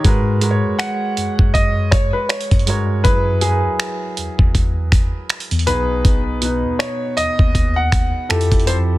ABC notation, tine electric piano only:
X:1
M:4/4
L:1/16
Q:"Swing 16ths" 1/4=80
K:G#m
V:1 name="Tine electric piano" clef=bass
G,,3 F,, z2 F,, F,,4 z2 F,, =G,,2 | F,,3 E,, z2 E,, E,,4 z2 E,, B,,,2- | B,,,3 D,, z2 D,, D,,4 z =F,, F,, F,,2 |]